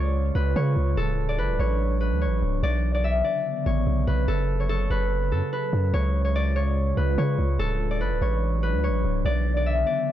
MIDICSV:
0, 0, Header, 1, 4, 480
1, 0, Start_track
1, 0, Tempo, 413793
1, 1128, Time_signature, 4, 2, 24, 8
1, 11739, End_track
2, 0, Start_track
2, 0, Title_t, "Harp"
2, 0, Program_c, 0, 46
2, 0, Note_on_c, 0, 69, 68
2, 0, Note_on_c, 0, 71, 80
2, 0, Note_on_c, 0, 73, 86
2, 401, Note_off_c, 0, 71, 0
2, 405, Note_on_c, 0, 71, 78
2, 645, Note_off_c, 0, 73, 0
2, 650, Note_on_c, 0, 73, 87
2, 1034, Note_off_c, 0, 69, 0
2, 1128, Note_on_c, 0, 69, 103
2, 1493, Note_on_c, 0, 74, 83
2, 1563, Note_off_c, 0, 73, 0
2, 1601, Note_off_c, 0, 71, 0
2, 1606, Note_on_c, 0, 71, 89
2, 1850, Note_on_c, 0, 73, 80
2, 1919, Note_off_c, 0, 74, 0
2, 2322, Note_off_c, 0, 71, 0
2, 2327, Note_on_c, 0, 71, 79
2, 2564, Note_off_c, 0, 73, 0
2, 2569, Note_on_c, 0, 73, 79
2, 3055, Note_on_c, 0, 74, 108
2, 3125, Note_off_c, 0, 73, 0
2, 3411, Note_off_c, 0, 74, 0
2, 3416, Note_on_c, 0, 74, 83
2, 3527, Note_on_c, 0, 76, 73
2, 3676, Note_off_c, 0, 69, 0
2, 3758, Note_off_c, 0, 74, 0
2, 3762, Note_on_c, 0, 74, 86
2, 4247, Note_on_c, 0, 73, 89
2, 4316, Note_off_c, 0, 74, 0
2, 4704, Note_off_c, 0, 71, 0
2, 4725, Note_on_c, 0, 71, 87
2, 4964, Note_on_c, 0, 69, 111
2, 5330, Note_off_c, 0, 73, 0
2, 5334, Note_on_c, 0, 73, 76
2, 5438, Note_off_c, 0, 69, 0
2, 5443, Note_on_c, 0, 69, 101
2, 5526, Note_off_c, 0, 76, 0
2, 5685, Note_off_c, 0, 71, 0
2, 5690, Note_on_c, 0, 71, 88
2, 6163, Note_off_c, 0, 69, 0
2, 6168, Note_on_c, 0, 69, 70
2, 6406, Note_off_c, 0, 71, 0
2, 6411, Note_on_c, 0, 71, 80
2, 6881, Note_off_c, 0, 73, 0
2, 6886, Note_on_c, 0, 73, 106
2, 7241, Note_off_c, 0, 73, 0
2, 7246, Note_on_c, 0, 73, 80
2, 7371, Note_on_c, 0, 74, 95
2, 7441, Note_off_c, 0, 73, 0
2, 7607, Note_on_c, 0, 73, 87
2, 7677, Note_off_c, 0, 74, 0
2, 8082, Note_off_c, 0, 71, 0
2, 8087, Note_on_c, 0, 71, 77
2, 8326, Note_off_c, 0, 73, 0
2, 8330, Note_on_c, 0, 73, 90
2, 8715, Note_off_c, 0, 69, 0
2, 8808, Note_on_c, 0, 69, 108
2, 9173, Note_on_c, 0, 74, 84
2, 9242, Note_off_c, 0, 73, 0
2, 9283, Note_off_c, 0, 71, 0
2, 9288, Note_on_c, 0, 71, 88
2, 9531, Note_on_c, 0, 73, 83
2, 9601, Note_off_c, 0, 74, 0
2, 10004, Note_off_c, 0, 71, 0
2, 10009, Note_on_c, 0, 71, 79
2, 10246, Note_off_c, 0, 73, 0
2, 10251, Note_on_c, 0, 73, 81
2, 10736, Note_on_c, 0, 74, 107
2, 10805, Note_off_c, 0, 73, 0
2, 11093, Note_off_c, 0, 74, 0
2, 11097, Note_on_c, 0, 74, 81
2, 11209, Note_on_c, 0, 76, 72
2, 11356, Note_off_c, 0, 69, 0
2, 11439, Note_off_c, 0, 74, 0
2, 11444, Note_on_c, 0, 74, 82
2, 11739, Note_off_c, 0, 71, 0
2, 11739, Note_off_c, 0, 74, 0
2, 11739, Note_off_c, 0, 76, 0
2, 11739, End_track
3, 0, Start_track
3, 0, Title_t, "Ambient pad"
3, 0, Program_c, 1, 92
3, 0, Note_on_c, 1, 49, 82
3, 0, Note_on_c, 1, 56, 73
3, 0, Note_on_c, 1, 65, 88
3, 1109, Note_off_c, 1, 49, 0
3, 1109, Note_off_c, 1, 56, 0
3, 1109, Note_off_c, 1, 65, 0
3, 1128, Note_on_c, 1, 52, 83
3, 1128, Note_on_c, 1, 54, 76
3, 1128, Note_on_c, 1, 62, 87
3, 3028, Note_off_c, 1, 62, 0
3, 3029, Note_off_c, 1, 52, 0
3, 3029, Note_off_c, 1, 54, 0
3, 3048, Note_on_c, 1, 59, 74
3, 3049, Note_on_c, 1, 49, 90
3, 3050, Note_on_c, 1, 50, 81
3, 4949, Note_off_c, 1, 50, 0
3, 4949, Note_off_c, 1, 59, 0
3, 4968, Note_on_c, 1, 54, 79
3, 4968, Note_on_c, 1, 69, 87
3, 6850, Note_off_c, 1, 49, 0
3, 6868, Note_off_c, 1, 54, 0
3, 6869, Note_off_c, 1, 69, 0
3, 6887, Note_on_c, 1, 49, 81
3, 6887, Note_on_c, 1, 65, 87
3, 6888, Note_on_c, 1, 56, 76
3, 8788, Note_off_c, 1, 49, 0
3, 8788, Note_off_c, 1, 56, 0
3, 8788, Note_off_c, 1, 65, 0
3, 8808, Note_on_c, 1, 54, 76
3, 8809, Note_on_c, 1, 52, 83
3, 8809, Note_on_c, 1, 62, 89
3, 10709, Note_off_c, 1, 52, 0
3, 10709, Note_off_c, 1, 54, 0
3, 10709, Note_off_c, 1, 62, 0
3, 10728, Note_on_c, 1, 49, 89
3, 10728, Note_on_c, 1, 50, 80
3, 10728, Note_on_c, 1, 59, 73
3, 11739, Note_off_c, 1, 49, 0
3, 11739, Note_off_c, 1, 50, 0
3, 11739, Note_off_c, 1, 59, 0
3, 11739, End_track
4, 0, Start_track
4, 0, Title_t, "808-style bass"
4, 0, Program_c, 2, 38
4, 0, Note_on_c, 2, 37, 117
4, 361, Note_off_c, 2, 37, 0
4, 407, Note_on_c, 2, 37, 109
4, 638, Note_off_c, 2, 37, 0
4, 648, Note_on_c, 2, 49, 116
4, 878, Note_off_c, 2, 49, 0
4, 888, Note_on_c, 2, 37, 108
4, 1118, Note_off_c, 2, 37, 0
4, 1128, Note_on_c, 2, 26, 107
4, 1608, Note_on_c, 2, 30, 101
4, 1626, Note_off_c, 2, 26, 0
4, 1735, Note_on_c, 2, 26, 102
4, 1753, Note_off_c, 2, 30, 0
4, 1842, Note_off_c, 2, 26, 0
4, 1848, Note_on_c, 2, 33, 104
4, 2455, Note_on_c, 2, 38, 101
4, 2472, Note_off_c, 2, 33, 0
4, 2631, Note_on_c, 2, 33, 106
4, 2649, Note_off_c, 2, 38, 0
4, 2799, Note_off_c, 2, 33, 0
4, 2808, Note_on_c, 2, 26, 112
4, 3038, Note_off_c, 2, 26, 0
4, 3047, Note_on_c, 2, 35, 114
4, 3739, Note_off_c, 2, 35, 0
4, 4247, Note_on_c, 2, 33, 103
4, 4478, Note_off_c, 2, 33, 0
4, 4487, Note_on_c, 2, 35, 112
4, 4718, Note_off_c, 2, 35, 0
4, 4727, Note_on_c, 2, 35, 108
4, 4958, Note_off_c, 2, 35, 0
4, 4968, Note_on_c, 2, 30, 116
4, 5659, Note_off_c, 2, 30, 0
4, 5688, Note_on_c, 2, 30, 105
4, 6167, Note_on_c, 2, 42, 101
4, 6185, Note_off_c, 2, 30, 0
4, 6288, Note_off_c, 2, 42, 0
4, 6648, Note_on_c, 2, 42, 108
4, 6878, Note_off_c, 2, 42, 0
4, 6888, Note_on_c, 2, 37, 113
4, 8041, Note_off_c, 2, 37, 0
4, 8088, Note_on_c, 2, 37, 103
4, 8318, Note_off_c, 2, 37, 0
4, 8328, Note_on_c, 2, 49, 109
4, 8558, Note_off_c, 2, 49, 0
4, 8567, Note_on_c, 2, 37, 109
4, 8798, Note_off_c, 2, 37, 0
4, 8808, Note_on_c, 2, 26, 107
4, 9288, Note_on_c, 2, 30, 98
4, 9306, Note_off_c, 2, 26, 0
4, 9416, Note_on_c, 2, 26, 102
4, 9433, Note_off_c, 2, 30, 0
4, 9522, Note_off_c, 2, 26, 0
4, 9528, Note_on_c, 2, 33, 102
4, 10135, Note_on_c, 2, 38, 97
4, 10152, Note_off_c, 2, 33, 0
4, 10311, Note_on_c, 2, 33, 104
4, 10329, Note_off_c, 2, 38, 0
4, 10479, Note_off_c, 2, 33, 0
4, 10488, Note_on_c, 2, 26, 106
4, 10718, Note_off_c, 2, 26, 0
4, 10728, Note_on_c, 2, 35, 118
4, 11419, Note_off_c, 2, 35, 0
4, 11739, End_track
0, 0, End_of_file